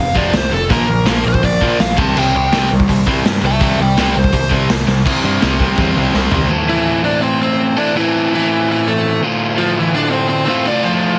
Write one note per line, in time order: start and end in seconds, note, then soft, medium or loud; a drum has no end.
0.00 0.14 F1 medium
0.00 0.14 F2 medium
0.00 0.14 C3 medium
0.00 0.17 F5 medium
0.15 0.32 F1 medium
0.15 0.32 F2 loud
0.15 0.32 C3 loud
0.15 0.33 F3 loud
0.15 0.34 D5 medium
0.15 kick medium
0.33 0.50 C2 loud
0.33 0.50 F2 medium
0.33 0.50 C3 medium
0.33 0.53 C5 medium
0.33 snare loud
0.33 open hi-hat medium
0.52 0.69 F1 loud
0.52 0.69 F2 medium
0.52 0.68 C3 medium
0.52 0.70 A4 medium
0.69 0.86 A#1 medium
0.69 0.87 A#2 loud
0.69 0.87 F3 medium
0.69 0.87 A#3 loud
0.69 1.05 A#4 loud
0.69 kick loud
0.69 open hi-hat medium
0.88 1.05 A#1 medium
0.88 1.04 A#2 medium
0.88 1.05 F3 medium
1.05 1.23 A#1 medium
1.05 1.22 A#2 medium
1.05 1.22 F3 loud
1.05 1.23 A#3 loud
1.05 snare loud
1.05 open hi-hat medium
1.23 1.42 A#1 loud
1.23 1.40 A#2 medium
1.23 1.40 F3 medium
1.28 1.44 C5 medium
1.34 kick medium
1.42 1.59 A#1 loud
1.42 1.59 A#2 medium
1.42 1.59 F3 medium
1.42 1.79 D5 loud
1.42 kick loud
1.42 open hi-hat medium
1.61 1.77 A#1 medium
1.61 1.78 A#2 medium
1.61 1.79 F3 loud
1.61 1.79 A#3 loud
1.61 kick medium
1.80 1.96 A#1 loud
1.80 1.96 A#2 medium
1.80 1.96 F3 loud
1.80 1.98 F5 medium
1.80 snare loud
1.80 open hi-hat medium
1.96 2.14 C2 loud
1.96 2.14 C3 loud
1.96 2.14 G3 loud
1.96 2.14 C4 loud
1.96 2.16 A5 medium
1.96 kick loud
2.15 2.33 C2 medium
2.15 2.32 C3 loud
2.15 2.33 G3 loud
2.15 2.33 C4 loud
2.15 crash loud
2.19 2.35 G5 loud
2.34 2.51 C2 medium
2.34 2.50 C3 medium
2.34 2.51 G3 medium
2.34 2.70 G5 loud
2.52 2.68 C2 loud
2.52 2.69 C3 loud
2.52 2.69 G3 loud
2.52 2.70 C4 loud
2.52 snare loud
2.52 open hi-hat medium
2.70 2.87 C2 medium
2.70 2.86 C3 medium
2.70 2.87 G3 medium
2.80 kick medium
2.88 3.05 C2 loud
2.88 3.05 C3 medium
2.88 3.04 G3 medium
2.88 kick loud
2.88 open hi-hat medium
3.07 3.23 C2 medium
3.07 3.24 C3 loud
3.07 3.24 G3 medium
3.07 3.24 C4 loud
3.07 kick medium
3.24 3.41 G2 medium
3.24 3.41 C3 medium
3.24 3.41 G3 medium
3.24 snare loud
3.24 open hi-hat medium
3.43 3.59 C2 loud
3.43 3.59 C3 medium
3.43 3.60 G3 medium
3.43 3.62 E5 loud
3.43 3.62 A5 loud
3.61 3.77 C2 medium
3.61 3.78 C3 loud
3.61 3.78 G3 loud
3.61 3.79 C4 loud
3.61 3.79 E5 medium
3.61 3.80 A5 medium
3.61 kick loud
3.61 open hi-hat medium
3.78 3.95 C2 medium
3.78 3.96 C3 medium
3.78 3.97 G3 medium
3.78 3.98 D5 medium
3.83 3.98 G5 loud
3.98 4.14 C2 medium
3.98 4.15 C3 loud
3.98 4.15 G3 loud
3.98 4.15 C4 loud
3.98 4.15 D5 medium
3.98 4.16 G5 loud
3.98 snare loud
3.98 open hi-hat medium
4.16 4.32 C2 medium
4.16 4.32 C3 medium
4.16 4.32 G3 medium
4.16 4.51 C5 medium
4.24 kick medium
4.32 4.49 C2 medium
4.32 4.48 C3 medium
4.32 4.49 G3 medium
4.32 kick loud
4.32 open hi-hat medium
4.49 4.68 C2 loud
4.49 4.67 C3 loud
4.49 4.68 G3 loud
4.49 4.68 C4 loud
4.49 kick medium
4.68 4.86 C2 loud
4.68 4.85 C3 medium
4.68 4.85 G3 medium
4.68 snare loud
4.68 open hi-hat medium
4.87 5.04 C2 medium
4.87 5.03 C3 medium
4.87 5.04 G3 medium
4.87 snare medium
5.05 5.18 C2 medium
5.05 5.23 C3 loud
5.05 5.23 G3 loud
5.05 5.24 C4 loud
5.05 kick loud
5.05 crash loud
5.05 crash medium
5.24 5.36 G2 medium
5.24 5.40 C3 medium
5.24 5.40 G3 medium
5.24 5.41 C4 loud
5.41 5.68 C2 medium
5.41 5.57 C3 loud
5.41 5.57 G3 loud
5.41 5.58 C4 loud
5.41 snare loud
5.41 crash medium
5.58 5.75 C3 loud
5.58 5.75 G3 medium
5.58 5.77 C4 loud
5.58 kick medium
5.76 5.91 E2 loud
5.76 5.95 C3 medium
5.76 5.96 G3 loud
5.76 5.97 C4 loud
5.76 kick loud
5.76 crash medium
5.96 6.09 C2 medium
5.96 6.12 C3 loud
5.96 6.12 G3 loud
5.96 6.13 C4 loud
6.13 6.27 C2 loud
6.13 6.30 C3 loud
6.13 6.31 G3 loud
6.13 6.32 C4 loud
6.13 snare medium
6.31 6.46 C2 loud
6.31 6.48 C3 medium
6.31 6.49 G3 loud
6.31 6.48 C4 medium
6.31 floor tom loud
6.48 7.74 A2 loud
6.48 7.75 E3 loud
6.48 7.78 A3 loud
6.48 7.75 C4 medium
6.48 7.75 E4 loud
6.48 7.76 A4 loud
6.69 7.03 E3 medium
6.69 7.04 E4 loud
7.04 7.23 D4 medium
7.04 7.22 D5 medium
7.21 7.40 C4 medium
7.21 7.39 C5 medium
7.42 7.78 C4 medium
7.42 7.75 C5 medium
7.77 7.93 A2 medium
7.77 7.94 E3 medium
7.77 7.95 A3 medium
7.77 7.94 C4 medium
7.77 7.96 D4 medium
7.77 7.94 E4 medium
7.77 7.96 A4 medium
7.77 7.94 D5 medium
7.94 9.19 A2 loud
7.94 9.20 E3 loud
7.94 8.29 E3 medium
7.94 9.23 A3 loud
7.94 9.21 C4 loud
7.94 8.33 E4 medium
7.94 9.21 E4 loud
7.94 9.24 A4 loud
8.34 8.66 E3 medium
8.34 8.70 E4 loud
8.71 8.86 E3 medium
8.71 8.88 E4 medium
8.87 9.20 A3 medium
8.87 9.20 A4 loud
9.21 10.45 D2 medium
9.21 10.46 A2 loud
9.21 10.47 D3 loud
9.21 10.47 A3 loud
9.21 10.48 F4 loud
9.58 9.75 F3 medium
9.58 9.78 F4 medium
9.78 9.94 E3 medium
9.78 9.94 E4 medium
9.95 10.12 D4 medium
9.95 10.11 D5 medium
10.10 10.27 C4 medium
10.10 10.28 C5 medium
10.28 10.44 C4 medium
10.28 10.46 C5 medium
10.45 10.64 D2 medium
10.45 10.64 A2 medium
10.45 10.65 D3 medium
10.45 10.65 C4 medium
10.45 10.65 C5 medium
10.50 10.65 A3 medium
10.50 10.65 F4 loud
10.65 11.19 D2 medium
10.65 11.19 A2 medium
10.65 11.19 D3 loud
10.65 11.19 A3 loud
10.65 10.83 D4 medium
10.65 11.19 F4 loud
10.65 10.83 D5 medium
10.83 11.17 F3 medium
10.83 11.19 F4 loud